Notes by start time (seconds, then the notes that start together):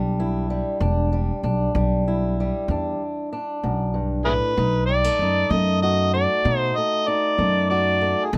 Already playing: B1 E2 G3 D4 E4
0.20 E4
0.50 G3
0.80 E1 E2 D4
1.13 G3
1.43 B1 D4
1.75 B1 E2 G3
2.08 E4
2.40 G3
2.68 E2 D4
3.33 D4
3.63 B1 F#2
3.94 G2
4.25 A2 E4 G#4 B4
4.57 B1 B2 D#4
4.86 G3 D5
5.04 A3
5.19 F#2 D#4
5.50 F#2 B2 A3 D#5
5.82 F#4 D#5
6.14 A3 D5
6.45 B2 D#4
6.58 C5
6.76 A3 D#5
7.08 D#4 D5
7.38 F#2 B2 A3
7.70 F#4 D5
8.01 A3
8.25 G#4
8.33 B1 B2 D#4